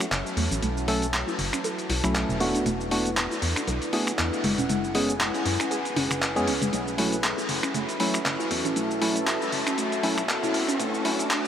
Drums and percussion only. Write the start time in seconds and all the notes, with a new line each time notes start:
0.01 finger snap, closed hi-hat, shaker
0.12 clap, closed hi-hat, shaker
0.27 shaker
0.37 open hi-hat
0.51 closed hi-hat, shaker
0.63 closed hi-hat, shaker
0.77 shaker
0.88 open hi-hat
1.02 closed hi-hat, shaker
1.13 clap, closed hi-hat, shaker
1.28 shaker
1.39 open hi-hat
1.53 finger snap, closed hi-hat, shaker
1.64 closed hi-hat, shaker
1.78 closed hi-hat, shaker
1.90 open hi-hat
2.04 finger snap, shaker
2.15 clap, closed hi-hat, shaker
2.30 shaker
2.40 open hi-hat
2.55 closed hi-hat, shaker
2.66 closed hi-hat, shaker
2.81 shaker
2.91 open hi-hat
3.06 closed hi-hat, shaker
3.17 clap, closed hi-hat, shaker
3.32 shaker
3.42 open hi-hat
3.56 finger snap, closed hi-hat, shaker
3.68 closed hi-hat, shaker
3.82 closed hi-hat, shaker
3.93 open hi-hat
4.07 finger snap, closed hi-hat, shaker
4.18 clap, closed hi-hat, shaker
4.33 shaker
4.44 open hi-hat
4.58 closed hi-hat, shaker
4.69 closed hi-hat, shaker
4.84 shaker
4.95 open hi-hat
5.09 closed hi-hat, shaker
5.20 clap, closed hi-hat, shaker
5.34 closed hi-hat, shaker
5.46 open hi-hat
5.60 finger snap, closed hi-hat, shaker
5.71 closed hi-hat, shaker
5.85 closed hi-hat, shaker
5.96 open hi-hat
6.11 finger snap, closed hi-hat, shaker
6.22 clap, closed hi-hat, shaker
6.36 closed hi-hat, shaker
6.47 open hi-hat
6.62 closed hi-hat, shaker
6.73 closed hi-hat, shaker
6.88 shaker
6.98 open hi-hat
7.12 closed hi-hat, shaker
7.24 clap, closed hi-hat, shaker
7.38 shaker
7.49 open hi-hat
7.63 finger snap, shaker
7.74 closed hi-hat, shaker
7.89 closed hi-hat, shaker
8.00 open hi-hat
8.14 finger snap, shaker
8.25 clap, closed hi-hat, shaker
8.40 shaker
8.51 open hi-hat
8.65 closed hi-hat, shaker
8.76 closed hi-hat, shaker
8.91 shaker
9.02 open hi-hat
9.16 closed hi-hat, shaker
9.27 clap, closed hi-hat, shaker
9.42 shaker
9.52 open hi-hat
9.67 finger snap, closed hi-hat, shaker
9.78 closed hi-hat, shaker
9.92 closed hi-hat, shaker
10.03 open hi-hat
10.18 finger snap, shaker
10.29 clap, closed hi-hat, shaker
10.44 shaker
10.54 open hi-hat
10.68 closed hi-hat, shaker
10.80 closed hi-hat, shaker
10.94 shaker
11.05 open hi-hat
11.19 closed hi-hat, shaker
11.30 clap, closed hi-hat, shaker